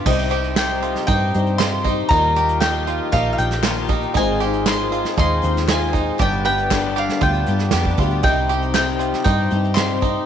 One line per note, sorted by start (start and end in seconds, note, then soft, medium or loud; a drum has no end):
0.06 0.95 C2 medium
0.06 2.07 C2 medium
0.06 0.32 C3 medium
0.06 2.07 C3 medium
0.06 0.32 G3 medium
0.06 1.32 G3 medium
0.06 2.09 C4 medium
0.06 1.32 C4 medium
0.06 0.31 D#4 medium
0.06 4.11 D#4 medium
0.06 0.31 D#4 medium
0.06 1.32 D#4 medium
0.06 2.09 G4 medium
0.06 0.30 G4 medium
0.06 1.32 C5 medium
0.06 0.28 C5 medium
0.06 1.32 D#5 medium
0.06 0.56 G5 medium
0.06 kick loud
0.06 crash loud
0.30 0.56 D#4 soft
0.30 0.82 G4 medium
0.30 0.57 G4 medium
0.30 0.56 C5 medium
0.30 closed hi-hat medium
0.44 closed hi-hat soft
0.56 1.08 C3 medium
0.56 1.09 G3 medium
0.56 1.10 D#4 medium
0.56 1.11 G4 medium
0.56 1.09 C5 medium
0.56 1.06 G5 medium
0.56 snare loud
0.56 clap loud
0.56 closed hi-hat medium
0.56 tambourine medium
0.82 1.07 F4 medium
0.82 closed hi-hat medium
0.95 snare soft
1.07 1.31 G2 medium
1.07 1.35 G3 medium
1.07 1.58 D#4 medium
1.07 1.35 D#4 medium
1.07 1.58 G5 medium
1.07 kick loud
1.07 closed hi-hat medium
1.11 1.35 G4 medium
1.11 1.33 C5 medium
1.34 2.01 G2 medium
1.34 2.10 G3 soft
1.34 2.11 C4 soft
1.34 2.10 D#4 soft
1.34 1.60 D#4 soft
1.34 1.60 G4 soft
1.34 1.60 C5 soft
1.34 2.11 C5 soft
1.34 2.10 D#5 medium
1.34 closed hi-hat medium
1.47 closed hi-hat soft
1.58 1.85 C3 medium
1.58 1.86 G3 medium
1.58 1.86 D#4 medium
1.58 1.84 F4 medium
1.58 1.86 G4 medium
1.58 1.84 C5 medium
1.58 2.08 C6 loud
1.58 snare loud
1.58 clap medium
1.58 closed hi-hat medium
1.58 tambourine medium
1.84 2.09 D#4 medium
1.84 2.12 G4 soft
1.84 2.11 C5 medium
1.84 kick medium
1.84 closed hi-hat medium
1.89 2.12 D#4 soft
2.09 2.99 D#2 loud
2.09 4.12 D#2 medium
2.09 2.37 D#3 medium
2.09 4.14 D#3 medium
2.09 4.12 D#3 medium
2.09 2.37 F3 medium
2.09 4.12 G3 medium
2.09 2.37 A#3 medium
2.09 2.36 D#4 medium
2.09 4.11 D#4 medium
2.09 4.12 F4 medium
2.09 6.17 F4 medium
2.09 4.14 G4 medium
2.09 4.14 A#4 medium
2.09 4.12 A#4 medium
2.09 4.12 D#5 medium
2.09 2.60 A#5 loud
2.09 kick loud
2.09 closed hi-hat medium
2.13 2.36 F4 medium
2.13 2.35 G4 medium
2.36 2.62 A#3 soft
2.36 2.62 F4 medium
2.36 2.62 G4 medium
2.36 2.87 G4 medium
2.36 closed hi-hat medium
2.49 closed hi-hat soft
2.60 3.13 D#3 medium
2.60 3.12 F3 medium
2.60 3.12 A#3 medium
2.60 3.14 F4 medium
2.60 3.14 G4 medium
2.60 3.09 G5 medium
2.60 snare loud
2.60 clap loud
2.60 closed hi-hat medium
2.60 tambourine medium
2.87 3.12 F4 medium
2.87 closed hi-hat medium
3.12 3.35 A#1 medium
3.12 3.38 F3 medium
3.12 3.39 A#3 medium
3.12 3.63 D#4 medium
3.12 3.39 F4 medium
3.12 3.37 G4 medium
3.12 3.30 F5 medium
3.12 kick loud
3.12 closed hi-hat loud
3.26 closed hi-hat soft
3.33 3.38 F5 medium
3.38 4.05 A#1 medium
3.38 3.64 A#3 soft
3.38 3.64 F4 soft
3.38 3.64 G4 medium
3.38 3.86 G5 medium
3.38 closed hi-hat medium
3.51 snare soft
3.51 closed hi-hat soft
3.63 3.90 D#3 medium
3.63 3.89 F3 medium
3.63 3.90 A#3 medium
3.63 3.89 F4 medium
3.63 3.90 F4 loud
3.63 3.88 G4 loud
3.63 snare loud
3.63 clap loud
3.63 closed hi-hat medium
3.63 tambourine medium
3.77 closed hi-hat soft
3.88 4.13 D#4 medium
3.88 4.16 F4 soft
3.88 4.15 G4 medium
3.88 kick medium
3.88 closed hi-hat medium
3.93 4.17 A#3 soft
4.02 closed hi-hat soft
4.14 5.04 G#1 loud
4.14 6.16 G#1 medium
4.14 6.17 G#2 medium
4.14 4.41 G#3 medium
4.14 6.18 G#3 medium
4.14 6.17 G#3 medium
4.14 6.18 C4 medium
4.14 4.40 D#4 medium
4.14 4.42 D#4 medium
4.14 6.17 D#4 medium
4.14 4.42 F4 medium
4.14 6.17 F4 medium
4.14 6.17 C5 medium
4.14 6.17 D#5 medium
4.14 4.67 G#5 loud
4.14 kick loud
4.14 closed hi-hat medium
4.19 4.42 C5 medium
4.40 4.67 F4 soft
4.40 4.91 G4 medium
4.40 4.67 C5 medium
4.40 closed hi-hat medium
4.46 4.66 D#4 soft
4.53 closed hi-hat soft
4.66 5.16 G#3 medium
4.66 5.17 D#4 medium
4.66 5.18 F4 medium
4.66 5.19 C5 medium
4.66 5.15 C6 loud
4.66 snare loud
4.66 clap loud
4.66 closed hi-hat medium
4.66 tambourine medium
4.92 5.17 F4 medium
4.92 closed hi-hat medium
5.05 snare soft
5.17 5.40 D#2 loud
5.17 5.43 G#3 medium
5.17 5.68 D#4 medium
5.17 5.43 D#4 medium
5.17 5.43 F4 medium
5.17 5.41 C5 medium
5.17 5.71 C6 loud
5.17 kick loud
5.17 closed hi-hat medium
5.42 6.10 D#2 medium
5.42 5.68 D#4 soft
5.42 5.69 F4 soft
5.42 5.68 C5 medium
5.42 closed hi-hat medium
5.57 snare soft
5.57 closed hi-hat soft
5.68 5.94 G#3 medium
5.68 5.95 D#4 medium
5.68 5.93 F4 medium
5.68 5.95 F4 medium
5.68 5.92 C5 medium
5.68 6.21 G#5 medium
5.68 snare loud
5.68 clap medium
5.68 closed hi-hat medium
5.68 tambourine medium
5.93 6.19 D#4 medium
5.93 6.19 D#4 soft
5.93 6.19 F4 soft
5.93 6.19 C5 medium
5.93 kick medium
5.93 closed hi-hat medium
6.18 8.20 G1 medium
6.18 7.08 G1 medium
6.18 6.44 G2 medium
6.18 8.20 G2 medium
6.18 6.45 D3 medium
6.18 8.20 G3 medium
6.18 6.45 G3 medium
6.18 8.20 B3 medium
6.18 6.45 B3 medium
6.18 8.22 B3 medium
6.18 8.20 D4 medium
6.18 6.45 D4 medium
6.18 8.22 D4 medium
6.18 6.45 G4 medium
6.18 10.26 G4 medium
6.18 6.44 G4 medium
6.18 8.20 B4 medium
6.18 8.20 D5 medium
6.18 6.44 G5 loud
6.18 kick loud
6.18 closed hi-hat medium
6.45 6.71 G3 soft
6.45 6.71 B3 soft
6.45 6.71 D4 medium
6.45 6.71 G4 medium
6.45 6.95 B4 medium
6.45 6.98 G5 loud
6.45 closed hi-hat medium
6.58 closed hi-hat soft
6.70 7.22 G2 medium
6.70 7.22 D3 medium
6.70 7.22 G3 medium
6.70 7.22 B3 medium
6.70 7.23 D4 medium
6.70 7.25 G4 medium
6.70 kick medium
6.70 snare loud
6.70 clap loud
6.70 closed hi-hat medium
6.70 tambourine medium
6.96 7.21 G4 medium
6.96 7.21 F5 medium
6.96 closed hi-hat medium
7.09 snare soft
7.21 7.44 D2 medium
7.21 7.47 G3 medium
7.21 7.48 B3 medium
7.21 7.49 D4 medium
7.21 7.71 F4 medium
7.21 7.95 G5 medium
7.21 kick loud
7.21 closed hi-hat medium
7.25 7.47 G4 medium
7.34 closed hi-hat soft
7.46 7.71 G2 medium
7.46 7.73 G4 medium
7.46 closed hi-hat medium
7.50 7.74 G3 soft
7.50 7.74 B3 soft
7.50 7.74 D4 soft
7.59 snare soft
7.59 closed hi-hat soft
7.71 7.96 F2 medium
7.71 7.99 G2 medium
7.71 7.99 D3 medium
7.71 7.99 G3 medium
7.71 7.98 G4 medium
7.71 snare loud
7.71 clap medium
7.71 closed hi-hat medium
7.71 tambourine medium
7.75 8.00 B3 medium
7.75 8.00 D4 medium
7.75 7.99 G4 medium
7.84 kick medium
7.84 closed hi-hat soft
7.97 8.21 D2 medium
7.97 8.23 F4 medium
7.97 8.25 G4 medium
7.97 kick medium
7.97 closed hi-hat medium
8.02 8.25 G3 medium
8.02 8.26 B3 soft
8.02 8.26 D4 medium
8.11 closed hi-hat soft
8.23 9.12 C2 loud
8.23 10.24 C2 medium
8.23 10.24 C3 medium
8.23 8.50 C3 medium
8.23 9.74 G3 medium
8.23 8.51 G3 medium
8.23 10.26 C4 medium
8.23 9.75 C4 soft
8.23 8.49 D#4 medium
8.23 10.26 D#4 medium
8.23 9.74 D#4 medium
8.23 9.74 C5 medium
8.23 9.74 D#5 medium
8.23 8.71 G5 medium
8.23 kick loud
8.23 closed hi-hat medium
8.27 8.51 C4 medium
8.27 8.50 D#4 medium
8.27 8.49 G4 medium
8.49 8.76 C4 soft
8.49 8.76 D#4 soft
8.49 9.00 G4 medium
8.49 8.75 G4 medium
8.49 closed hi-hat medium
8.62 closed hi-hat soft
8.74 9.26 C3 medium
8.74 9.26 G3 medium
8.74 9.26 C4 medium
8.74 9.28 D#4 medium
8.74 9.29 G4 medium
8.74 9.22 G5 medium
8.74 snare medium
8.74 clap loud
8.74 closed hi-hat medium
8.74 tambourine loud
8.99 9.25 F4 medium
8.99 closed hi-hat medium
9.14 snare soft
9.24 9.48 G2 loud
9.24 9.52 G3 medium
9.24 9.52 C4 medium
9.24 9.76 D#4 medium
9.24 9.74 G5 medium
9.24 kick loud
9.24 closed hi-hat medium
9.28 9.52 D#4 medium
9.28 9.49 G4 medium
9.51 10.18 G2 medium
9.51 9.76 C4 soft
9.51 9.77 D#4 soft
9.51 9.77 G4 medium
9.51 closed hi-hat medium
9.64 closed hi-hat soft
9.74 10.02 C3 medium
9.74 10.03 G3 medium
9.74 10.26 G3 medium
9.74 10.03 C4 medium
9.74 10.26 C4 soft
9.74 10.02 D#4 medium
9.74 10.26 D#4 soft
9.74 10.02 F4 medium
9.74 10.26 C5 soft
9.74 10.23 C6 loud
9.74 snare loud
9.74 clap loud
9.74 closed hi-hat medium
9.74 tambourine loud
9.78 10.00 G4 medium
9.78 10.26 D#5 medium
10.01 10.26 C4 soft
10.01 10.26 D#4 medium
10.01 10.26 G4 soft
10.01 kick medium
10.01 closed hi-hat medium